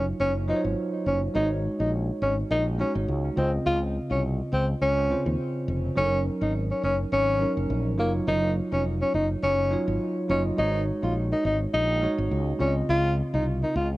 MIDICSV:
0, 0, Header, 1, 4, 480
1, 0, Start_track
1, 0, Key_signature, -5, "major"
1, 0, Tempo, 576923
1, 1126, Time_signature, 4, 2, 24, 8
1, 11623, End_track
2, 0, Start_track
2, 0, Title_t, "Tine electric piano"
2, 0, Program_c, 0, 4
2, 0, Control_c, 0, 64, 127
2, 0, Note_on_c, 0, 54, 78
2, 0, Note_on_c, 0, 63, 70
2, 0, Note_on_c, 0, 65, 72
2, 0, Note_on_c, 0, 73, 86
2, 395, Note_off_c, 0, 54, 0
2, 395, Note_on_c, 0, 54, 75
2, 402, Note_off_c, 0, 63, 0
2, 402, Note_on_c, 0, 63, 68
2, 409, Note_off_c, 0, 65, 0
2, 409, Note_on_c, 0, 65, 66
2, 416, Note_on_c, 0, 72, 69
2, 470, Note_off_c, 0, 72, 0
2, 470, Note_off_c, 0, 73, 0
2, 470, Note_on_c, 0, 73, 86
2, 847, Note_off_c, 0, 54, 0
2, 851, Note_off_c, 0, 63, 0
2, 854, Note_off_c, 0, 65, 0
2, 885, Note_off_c, 0, 73, 0
2, 1116, Note_on_c, 0, 56, 75
2, 1122, Note_on_c, 0, 63, 67
2, 1130, Note_on_c, 0, 66, 67
2, 1136, Note_on_c, 0, 73, 85
2, 1138, Control_c, 0, 64, 0
2, 1294, Control_c, 0, 64, 127
2, 1723, Note_off_c, 0, 56, 0
2, 1726, Note_off_c, 0, 63, 0
2, 1730, Note_off_c, 0, 66, 0
2, 1733, Note_off_c, 0, 73, 0
2, 2315, Note_on_c, 0, 56, 75
2, 2323, Note_on_c, 0, 63, 69
2, 2329, Note_on_c, 0, 66, 69
2, 2336, Note_on_c, 0, 73, 83
2, 2768, Note_off_c, 0, 56, 0
2, 2771, Note_off_c, 0, 63, 0
2, 2775, Note_off_c, 0, 66, 0
2, 2778, Note_off_c, 0, 73, 0
2, 2796, Note_on_c, 0, 49, 76
2, 2803, Note_on_c, 0, 60, 70
2, 2810, Note_on_c, 0, 65, 72
2, 2815, Control_c, 0, 64, 0
2, 2816, Note_on_c, 0, 75, 86
2, 2986, Control_c, 0, 64, 127
2, 3574, Note_off_c, 0, 49, 0
2, 3577, Note_off_c, 0, 60, 0
2, 3580, Note_off_c, 0, 65, 0
2, 3584, Note_off_c, 0, 75, 0
2, 4236, Note_on_c, 0, 49, 75
2, 4242, Note_on_c, 0, 60, 68
2, 4249, Note_on_c, 0, 65, 67
2, 4257, Note_on_c, 0, 72, 81
2, 4688, Note_off_c, 0, 49, 0
2, 4691, Note_off_c, 0, 60, 0
2, 4695, Note_off_c, 0, 65, 0
2, 4698, Note_off_c, 0, 72, 0
2, 4955, Note_on_c, 0, 54, 74
2, 4962, Note_on_c, 0, 61, 70
2, 4969, Note_on_c, 0, 63, 67
2, 4976, Control_c, 0, 64, 0
2, 4976, Note_on_c, 0, 69, 64
2, 5030, Note_off_c, 0, 69, 0
2, 5030, Note_on_c, 0, 70, 78
2, 5132, Control_c, 0, 64, 127
2, 5563, Note_off_c, 0, 54, 0
2, 5566, Note_off_c, 0, 61, 0
2, 5570, Note_off_c, 0, 63, 0
2, 5601, Note_off_c, 0, 70, 0
2, 6155, Note_on_c, 0, 54, 72
2, 6161, Note_on_c, 0, 61, 72
2, 6168, Note_on_c, 0, 63, 65
2, 6175, Note_on_c, 0, 70, 83
2, 6461, Note_off_c, 0, 54, 0
2, 6465, Note_off_c, 0, 61, 0
2, 6468, Note_off_c, 0, 63, 0
2, 6472, Note_off_c, 0, 70, 0
2, 6635, Note_on_c, 0, 54, 76
2, 6643, Note_on_c, 0, 63, 70
2, 6649, Note_on_c, 0, 65, 72
2, 6656, Control_c, 0, 64, 0
2, 6656, Note_on_c, 0, 73, 84
2, 6788, Control_c, 0, 64, 127
2, 7413, Note_off_c, 0, 54, 0
2, 7417, Note_off_c, 0, 63, 0
2, 7420, Note_off_c, 0, 65, 0
2, 7424, Note_off_c, 0, 73, 0
2, 8074, Note_on_c, 0, 54, 76
2, 8081, Note_on_c, 0, 63, 67
2, 8088, Note_on_c, 0, 65, 72
2, 8095, Note_on_c, 0, 73, 81
2, 8381, Note_off_c, 0, 54, 0
2, 8385, Note_off_c, 0, 63, 0
2, 8388, Note_off_c, 0, 65, 0
2, 8392, Note_off_c, 0, 73, 0
2, 8554, Note_on_c, 0, 54, 66
2, 8561, Note_on_c, 0, 63, 63
2, 8568, Note_on_c, 0, 65, 64
2, 8575, Note_on_c, 0, 75, 78
2, 8717, Note_off_c, 0, 54, 0
2, 8720, Note_off_c, 0, 63, 0
2, 8724, Note_off_c, 0, 65, 0
2, 8727, Note_off_c, 0, 75, 0
2, 8794, Note_on_c, 0, 56, 74
2, 8800, Note_on_c, 0, 63, 68
2, 8807, Note_on_c, 0, 66, 69
2, 8814, Note_on_c, 0, 73, 85
2, 8816, Control_c, 0, 64, 0
2, 8970, Control_c, 0, 64, 127
2, 9402, Note_off_c, 0, 56, 0
2, 9406, Note_off_c, 0, 63, 0
2, 9409, Note_off_c, 0, 66, 0
2, 9413, Note_off_c, 0, 73, 0
2, 9993, Note_on_c, 0, 56, 73
2, 10000, Note_on_c, 0, 63, 68
2, 10008, Note_on_c, 0, 66, 70
2, 10014, Note_on_c, 0, 73, 82
2, 10301, Note_off_c, 0, 56, 0
2, 10304, Note_off_c, 0, 63, 0
2, 10308, Note_off_c, 0, 66, 0
2, 10311, Note_off_c, 0, 73, 0
2, 10473, Note_on_c, 0, 49, 81
2, 10480, Note_on_c, 0, 60, 72
2, 10487, Note_on_c, 0, 65, 74
2, 10494, Note_on_c, 0, 74, 69
2, 10495, Control_c, 0, 64, 0
2, 10548, Note_on_c, 0, 75, 84
2, 10549, Note_off_c, 0, 74, 0
2, 10643, Control_c, 0, 64, 127
2, 11252, Note_off_c, 0, 49, 0
2, 11255, Note_off_c, 0, 60, 0
2, 11259, Note_off_c, 0, 65, 0
2, 11289, Note_off_c, 0, 75, 0
2, 11623, End_track
3, 0, Start_track
3, 0, Title_t, "Tenor saxophone"
3, 0, Program_c, 1, 66
3, 170, Note_on_c, 1, 61, 85
3, 280, Note_off_c, 1, 61, 0
3, 411, Note_on_c, 1, 63, 74
3, 521, Note_off_c, 1, 63, 0
3, 890, Note_on_c, 1, 61, 78
3, 1000, Note_off_c, 1, 61, 0
3, 1130, Note_on_c, 1, 63, 95
3, 1240, Note_off_c, 1, 63, 0
3, 1502, Note_on_c, 1, 63, 74
3, 1592, Note_off_c, 1, 63, 0
3, 1850, Note_on_c, 1, 61, 80
3, 1960, Note_off_c, 1, 61, 0
3, 2091, Note_on_c, 1, 63, 94
3, 2201, Note_off_c, 1, 63, 0
3, 2332, Note_on_c, 1, 61, 76
3, 2441, Note_off_c, 1, 61, 0
3, 2811, Note_on_c, 1, 60, 81
3, 2921, Note_off_c, 1, 60, 0
3, 3051, Note_on_c, 1, 65, 95
3, 3161, Note_off_c, 1, 65, 0
3, 3423, Note_on_c, 1, 61, 79
3, 3512, Note_off_c, 1, 61, 0
3, 3771, Note_on_c, 1, 60, 86
3, 3881, Note_off_c, 1, 60, 0
3, 4011, Note_on_c, 1, 61, 96
3, 4358, Note_off_c, 1, 61, 0
3, 4971, Note_on_c, 1, 61, 107
3, 5173, Note_off_c, 1, 61, 0
3, 5343, Note_on_c, 1, 63, 73
3, 5433, Note_off_c, 1, 63, 0
3, 5583, Note_on_c, 1, 61, 69
3, 5672, Note_off_c, 1, 61, 0
3, 5691, Note_on_c, 1, 61, 89
3, 5801, Note_off_c, 1, 61, 0
3, 5931, Note_on_c, 1, 61, 108
3, 6278, Note_off_c, 1, 61, 0
3, 6651, Note_on_c, 1, 58, 86
3, 6761, Note_off_c, 1, 58, 0
3, 6890, Note_on_c, 1, 63, 94
3, 7092, Note_off_c, 1, 63, 0
3, 7262, Note_on_c, 1, 61, 78
3, 7352, Note_off_c, 1, 61, 0
3, 7503, Note_on_c, 1, 61, 73
3, 7592, Note_off_c, 1, 61, 0
3, 7610, Note_on_c, 1, 63, 73
3, 7720, Note_off_c, 1, 63, 0
3, 7849, Note_on_c, 1, 61, 98
3, 8197, Note_off_c, 1, 61, 0
3, 8569, Note_on_c, 1, 61, 87
3, 8680, Note_off_c, 1, 61, 0
3, 8810, Note_on_c, 1, 63, 99
3, 9012, Note_off_c, 1, 63, 0
3, 9183, Note_on_c, 1, 65, 72
3, 9272, Note_off_c, 1, 65, 0
3, 9423, Note_on_c, 1, 63, 78
3, 9512, Note_off_c, 1, 63, 0
3, 9531, Note_on_c, 1, 63, 85
3, 9641, Note_off_c, 1, 63, 0
3, 9771, Note_on_c, 1, 63, 109
3, 10118, Note_off_c, 1, 63, 0
3, 10491, Note_on_c, 1, 61, 83
3, 10601, Note_off_c, 1, 61, 0
3, 10731, Note_on_c, 1, 65, 103
3, 10933, Note_off_c, 1, 65, 0
3, 11103, Note_on_c, 1, 63, 76
3, 11192, Note_off_c, 1, 63, 0
3, 11342, Note_on_c, 1, 63, 75
3, 11432, Note_off_c, 1, 63, 0
3, 11451, Note_on_c, 1, 65, 80
3, 11561, Note_off_c, 1, 65, 0
3, 11623, End_track
4, 0, Start_track
4, 0, Title_t, "Fretless electric bass"
4, 0, Program_c, 2, 35
4, 0, Note_on_c, 2, 30, 85
4, 94, Note_off_c, 2, 30, 0
4, 165, Note_on_c, 2, 30, 86
4, 427, Note_off_c, 2, 30, 0
4, 537, Note_on_c, 2, 32, 87
4, 613, Note_off_c, 2, 32, 0
4, 885, Note_on_c, 2, 30, 83
4, 1054, Note_off_c, 2, 30, 0
4, 1125, Note_on_c, 2, 32, 103
4, 1388, Note_off_c, 2, 32, 0
4, 1497, Note_on_c, 2, 34, 88
4, 1743, Note_off_c, 2, 34, 0
4, 1845, Note_on_c, 2, 32, 94
4, 2015, Note_off_c, 2, 32, 0
4, 2085, Note_on_c, 2, 34, 94
4, 2348, Note_off_c, 2, 34, 0
4, 2457, Note_on_c, 2, 32, 87
4, 2534, Note_off_c, 2, 32, 0
4, 2565, Note_on_c, 2, 37, 96
4, 2735, Note_off_c, 2, 37, 0
4, 2805, Note_on_c, 2, 37, 101
4, 2974, Note_off_c, 2, 37, 0
4, 3045, Note_on_c, 2, 37, 102
4, 3308, Note_off_c, 2, 37, 0
4, 3417, Note_on_c, 2, 36, 86
4, 3663, Note_off_c, 2, 36, 0
4, 3765, Note_on_c, 2, 37, 95
4, 3935, Note_off_c, 2, 37, 0
4, 4005, Note_on_c, 2, 37, 92
4, 4268, Note_off_c, 2, 37, 0
4, 4378, Note_on_c, 2, 39, 89
4, 4454, Note_off_c, 2, 39, 0
4, 4726, Note_on_c, 2, 29, 94
4, 4895, Note_off_c, 2, 29, 0
4, 4966, Note_on_c, 2, 30, 93
4, 5228, Note_off_c, 2, 30, 0
4, 5337, Note_on_c, 2, 32, 87
4, 5583, Note_off_c, 2, 32, 0
4, 5685, Note_on_c, 2, 30, 87
4, 5855, Note_off_c, 2, 30, 0
4, 5926, Note_on_c, 2, 32, 89
4, 6188, Note_off_c, 2, 32, 0
4, 6297, Note_on_c, 2, 30, 86
4, 6374, Note_off_c, 2, 30, 0
4, 6406, Note_on_c, 2, 34, 100
4, 6645, Note_off_c, 2, 34, 0
4, 6645, Note_on_c, 2, 30, 102
4, 6815, Note_off_c, 2, 30, 0
4, 6885, Note_on_c, 2, 30, 103
4, 7148, Note_off_c, 2, 30, 0
4, 7257, Note_on_c, 2, 29, 94
4, 7503, Note_off_c, 2, 29, 0
4, 7605, Note_on_c, 2, 30, 88
4, 7774, Note_off_c, 2, 30, 0
4, 7845, Note_on_c, 2, 30, 89
4, 8108, Note_off_c, 2, 30, 0
4, 8217, Note_on_c, 2, 32, 88
4, 8293, Note_off_c, 2, 32, 0
4, 8565, Note_on_c, 2, 30, 91
4, 8734, Note_off_c, 2, 30, 0
4, 8805, Note_on_c, 2, 32, 108
4, 9067, Note_off_c, 2, 32, 0
4, 9177, Note_on_c, 2, 34, 86
4, 9422, Note_off_c, 2, 34, 0
4, 9525, Note_on_c, 2, 32, 95
4, 9694, Note_off_c, 2, 32, 0
4, 9765, Note_on_c, 2, 34, 96
4, 10028, Note_off_c, 2, 34, 0
4, 10137, Note_on_c, 2, 32, 85
4, 10213, Note_off_c, 2, 32, 0
4, 10245, Note_on_c, 2, 37, 94
4, 10414, Note_off_c, 2, 37, 0
4, 10485, Note_on_c, 2, 37, 101
4, 10654, Note_off_c, 2, 37, 0
4, 10725, Note_on_c, 2, 37, 106
4, 10987, Note_off_c, 2, 37, 0
4, 11097, Note_on_c, 2, 36, 89
4, 11342, Note_off_c, 2, 36, 0
4, 11445, Note_on_c, 2, 37, 96
4, 11614, Note_off_c, 2, 37, 0
4, 11623, End_track
0, 0, End_of_file